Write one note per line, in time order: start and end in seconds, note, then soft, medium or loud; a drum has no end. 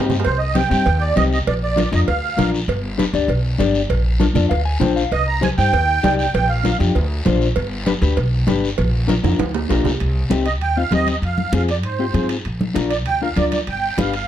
0.00 0.19 G2 loud
0.00 0.16 C4 medium
0.00 0.16 D#4 medium
0.00 0.16 G4 medium
0.00 low timbale medium
0.10 low conga medium
0.10 low timbale medium
0.10 short guiro medium
0.20 low timbale medium
0.24 0.62 C2 medium
0.24 0.39 C5 loud
0.24 cowbell loud
0.24 high conga soft
0.24 long guiro medium
0.38 0.55 D#5 medium
0.55 0.61 C4 medium
0.55 0.61 D#4 medium
0.55 0.61 G4 medium
0.55 0.69 G5 loud
0.55 cowbell medium
0.55 high conga medium
0.55 short guiro medium
0.70 0.83 G2 loud
0.70 0.86 C4 medium
0.70 0.87 D#4 medium
0.70 0.87 G4 medium
0.70 1.02 G5 loud
0.70 short guiro medium
0.86 1.11 D#2 loud
0.86 cowbell medium
0.86 high conga soft
0.86 long guiro medium
1.00 1.15 D5 medium
1.16 1.41 C2 medium
1.16 1.37 C4 medium
1.16 1.38 D#4 medium
1.16 1.38 G4 medium
1.16 1.23 D#5 loud
1.16 cowbell medium
1.16 high conga medium
1.16 short guiro medium
1.32 1.39 D#5 medium
1.32 short guiro medium
1.47 1.84 A#1 loud
1.47 1.54 D5 loud
1.47 cowbell loud
1.47 high conga soft
1.47 long guiro medium
1.63 1.91 D5 medium
1.76 1.82 D4 medium
1.76 1.82 F4 medium
1.76 1.83 A#4 medium
1.76 cowbell medium
1.76 high conga medium
1.76 short guiro medium
1.92 2.05 F2 loud
1.92 2.08 D4 medium
1.92 2.08 F4 soft
1.92 2.09 A#4 medium
1.92 2.00 D#5 medium
1.92 short guiro medium
2.08 2.32 D2 loud
2.08 2.50 F5 medium
2.08 cowbell medium
2.08 high conga soft
2.08 long guiro medium
2.37 2.62 A#1 medium
2.37 2.59 D4 medium
2.37 2.59 F4 medium
2.37 2.59 A#4 medium
2.37 cowbell medium
2.37 high conga medium
2.37 low conga medium
2.37 short guiro medium
2.55 short guiro medium
2.68 3.05 G1 medium
2.68 cowbell medium
2.68 high conga soft
2.68 long guiro medium
2.98 3.04 D4 medium
2.98 3.04 G4 medium
2.98 3.04 B4 loud
2.98 cowbell medium
2.98 high conga medium
2.98 short guiro medium
3.13 3.26 D2 loud
3.13 3.30 D4 medium
3.13 3.30 G4 medium
3.13 3.30 D5 medium
3.13 short guiro medium
3.28 3.53 B1 medium
3.28 cowbell medium
3.28 high conga soft
3.28 long guiro medium
3.58 3.84 G1 medium
3.58 3.81 D4 medium
3.58 3.81 G4 medium
3.58 3.81 D5 medium
3.58 cowbell medium
3.58 high conga medium
3.58 short guiro medium
3.74 short guiro medium
3.90 4.26 A#1 loud
3.90 cowbell medium
3.90 high conga soft
3.90 long guiro medium
4.20 4.26 D4 medium
4.20 4.26 F4 medium
4.20 4.26 A#4 medium
4.20 cowbell medium
4.20 high conga medium
4.20 short guiro medium
4.35 4.48 F2 loud
4.35 4.51 D4 medium
4.35 4.51 F4 medium
4.35 4.52 A#4 medium
4.35 4.49 D5 medium
4.35 low conga medium
4.35 short guiro medium
4.49 4.75 D2 loud
4.49 4.64 F5 medium
4.49 cowbell medium
4.49 high conga soft
4.49 long guiro medium
4.65 4.80 G#5 medium
4.80 5.06 A#1 medium
4.80 5.02 D4 medium
4.80 5.02 F4 medium
4.80 5.02 C5 medium
4.80 4.95 G5 medium
4.80 cowbell medium
4.80 high conga medium
4.80 low conga medium
4.80 short guiro medium
4.96 5.11 F5 medium
4.96 short guiro medium
5.11 5.48 C2 medium
5.11 5.27 D#5 loud
5.11 cowbell medium
5.11 high conga soft
5.11 long guiro medium
5.28 5.42 A#5 medium
5.41 5.47 D#4 medium
5.41 5.47 G4 medium
5.41 5.48 C5 medium
5.41 5.50 G#5 loud
5.41 cowbell medium
5.41 high conga medium
5.41 short guiro medium
5.58 5.70 G2 loud
5.58 5.74 D#4 medium
5.58 5.74 G4 soft
5.58 5.75 C5 medium
5.58 6.15 G5 loud
5.58 short guiro medium
5.73 5.97 D#2 loud
5.73 cowbell medium
5.73 high conga soft
5.73 long guiro medium
6.03 6.28 C2 medium
6.03 6.25 D#4 medium
6.03 6.25 G4 medium
6.03 6.25 D5 medium
6.03 cowbell medium
6.03 high conga medium
6.03 low timbale medium
6.03 short guiro medium
6.18 6.33 G5 medium
6.18 short guiro medium
6.34 6.71 A#1 loud
6.34 6.50 G5 loud
6.34 cowbell loud
6.34 high conga soft
6.34 long guiro medium
6.49 6.78 F5 medium
6.64 6.69 D4 medium
6.64 6.70 F4 medium
6.64 6.70 A#4 medium
6.64 cowbell medium
6.64 high conga medium
6.64 short guiro medium
6.79 6.92 F2 loud
6.79 6.95 D4 medium
6.79 6.96 F4 medium
6.79 6.96 G4 medium
6.79 short guiro medium
6.95 7.20 D2 loud
6.95 cowbell medium
6.95 high conga soft
6.95 long guiro medium
7.25 7.51 A#1 medium
7.25 7.47 D4 medium
7.25 7.47 F4 medium
7.25 7.47 C5 medium
7.25 cowbell medium
7.25 high conga medium
7.25 low conga medium
7.25 low timbale medium
7.25 short guiro medium
7.41 short guiro medium
7.56 7.93 G1 medium
7.56 cowbell medium
7.56 high conga soft
7.56 long guiro medium
7.86 7.92 D4 medium
7.86 7.92 G4 medium
7.86 7.92 B4 loud
7.86 cowbell medium
7.86 high conga medium
7.86 short guiro medium
8.02 8.14 D2 loud
8.02 8.18 D4 medium
8.02 8.18 G4 medium
8.02 8.18 B4 medium
8.02 short guiro medium
8.17 8.42 B1 loud
8.17 cowbell medium
8.17 high conga soft
8.17 long guiro medium
8.47 8.72 G1 medium
8.47 8.69 D4 medium
8.47 8.69 G4 medium
8.47 8.69 B4 medium
8.47 cowbell medium
8.47 high conga medium
8.47 low timbale medium
8.47 short guiro medium
8.64 short guiro medium
8.78 9.15 A#1 medium
8.78 cowbell medium
8.78 high conga soft
8.78 long guiro medium
9.08 9.13 D4 medium
9.08 9.14 F4 medium
9.08 9.14 A#4 loud
9.08 cowbell medium
9.08 high conga medium
9.08 short guiro medium
9.23 9.36 F2 loud
9.23 9.40 D4 medium
9.23 9.40 F4 medium
9.23 9.40 A#4 medium
9.23 low conga medium
9.23 high timbale medium
9.23 short guiro medium
9.39 9.64 D2 loud
9.39 cowbell medium
9.39 high conga medium
9.39 high timbale medium
9.39 long guiro medium
9.54 low timbale medium
9.69 9.84 A#1 medium
9.69 9.91 D4 medium
9.69 9.91 F4 medium
9.69 9.91 A#4 loud
9.69 cowbell medium
9.69 low timbale medium
9.69 short guiro medium
9.85 9.99 C2 medium
9.85 low conga medium
9.85 low timbale medium
9.85 short guiro medium
10.00 10.25 C2 loud
10.00 high timbale medium
10.00 long guiro medium
10.30 10.61 C2 medium
10.30 10.46 C4 medium
10.30 10.46 D#4 medium
10.30 10.47 G4 medium
10.30 high conga medium
10.30 high timbale medium
10.30 short guiro medium
10.46 10.53 D#5 medium
10.46 high timbale medium
10.46 short guiro medium
10.61 10.86 D#2 medium
10.61 10.78 G5 loud
10.61 high conga soft
10.61 high timbale medium
10.61 long guiro medium
10.76 10.82 C4 medium
10.76 10.82 D#4 medium
10.76 10.82 F4 medium
10.76 10.93 F5 loud
10.76 high conga soft
10.91 11.16 D#2 medium
10.91 11.14 C4 medium
10.91 11.14 D#4 medium
10.91 11.14 G4 medium
10.91 11.07 D#5 loud
10.91 high conga medium
10.91 high timbale medium
10.91 low timbale medium
10.91 short guiro medium
11.07 11.16 D#5 medium
11.07 high conga medium
11.07 high timbale medium
11.07 short guiro medium
11.22 11.47 F2 medium
11.22 11.52 F5 medium
11.22 high timbale medium
11.22 long guiro soft
11.38 high conga medium
11.52 11.84 F2 medium
11.52 11.69 C4 medium
11.52 11.69 F4 medium
11.52 11.70 G#4 medium
11.52 high conga medium
11.52 high timbale medium
11.52 short guiro medium
11.56 11.62 F5 medium
11.68 11.77 D5 medium
11.68 high timbale medium
11.68 short guiro medium
11.83 12.08 G#2 medium
11.83 12.27 C5 medium
11.83 high conga soft
11.83 high timbale medium
11.83 long guiro medium
11.99 12.05 C4 medium
11.99 12.05 F4 medium
11.99 12.05 G4 medium
11.99 high conga soft
12.13 12.39 G#2 medium
12.13 12.35 C4 medium
12.13 12.35 F4 medium
12.13 12.36 G#4 medium
12.13 high conga medium
12.13 high timbale medium
12.13 short guiro medium
12.29 high timbale medium
12.29 short guiro medium
12.45 12.70 A#1 medium
12.45 high timbale medium
12.45 long guiro medium
12.61 high conga medium
12.74 13.06 A#1 medium
12.74 12.91 D4 medium
12.74 12.91 F4 medium
12.74 12.91 A#4 medium
12.74 high conga medium
12.74 high timbale medium
12.74 short guiro medium
12.90 12.97 D5 medium
12.90 high timbale medium
12.90 short guiro medium
13.06 13.31 D2 medium
13.06 13.21 G5 loud
13.06 high conga soft
13.06 high timbale medium
13.06 long guiro medium
13.22 13.27 D4 medium
13.22 13.27 F4 medium
13.22 13.28 A#4 medium
13.22 13.38 F5 medium
13.22 high conga soft
13.36 13.61 D2 medium
13.36 13.58 D4 medium
13.36 13.58 F4 medium
13.36 13.59 A#4 medium
13.36 13.51 D5 medium
13.36 high conga medium
13.36 high timbale medium
13.36 short guiro medium
13.52 13.60 D5 medium
13.52 high conga medium
13.52 high timbale medium
13.52 short guiro medium
13.67 13.92 G1 medium
13.67 13.97 G5 loud
13.67 high timbale medium
13.67 long guiro medium
13.97 14.28 G1 medium
13.97 14.14 D4 medium
13.97 14.14 G4 medium
13.97 14.14 B4 medium
13.97 14.13 F5 medium
13.97 high conga medium
13.97 high timbale medium
13.97 short guiro medium
14.14 14.28 F5 medium
14.14 high timbale medium
14.14 short guiro medium